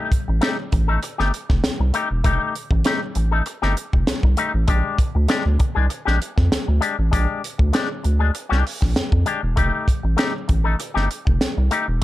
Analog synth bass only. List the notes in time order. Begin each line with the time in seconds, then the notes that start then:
0.28 A1
0.73 A1
1.20 G1
1.50 F1
1.64 C2
1.80 C2
2.11 E1
2.25 F1
2.71 A1
3.16 A1
3.63 G1
3.93 F1
4.07 C2
4.23 C2
4.54 A1
4.68 A#1
5.15 D2
5.46 D2
5.77 C2
6.07 A#1
6.38 F2
6.52 D2
6.68 D2
6.99 A1
7.13 A#1
7.59 D2
8.05 D2
8.52 C2
8.82 A#1
8.96 F2
9.12 F2
9.43 E1
9.57 F1
10.04 A1
10.49 A1
10.96 G1
11.27 F1
11.41 C2
11.58 C2
11.88 E1